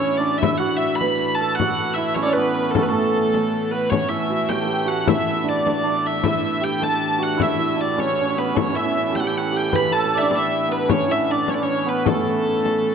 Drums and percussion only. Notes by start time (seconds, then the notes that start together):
0.03 frame drum
0.43 frame drum
0.63 frame drum
1.01 frame drum
1.21 frame drum
1.60 frame drum
1.78 frame drum
2.16 frame drum
2.36 frame drum
2.75 frame drum
2.94 frame drum
3.34 frame drum
3.92 frame drum
4.49 frame drum
5.08 frame drum
5.67 frame drum
6.24 frame drum
6.82 frame drum
7.40 frame drum
7.59 frame drum
7.98 frame drum
8.19 frame drum
8.57 frame drum
9.15 frame drum
9.73 frame drum
10.31 frame drum
10.89 frame drum
11.48 frame drum
12.06 frame drum
12.65 frame drum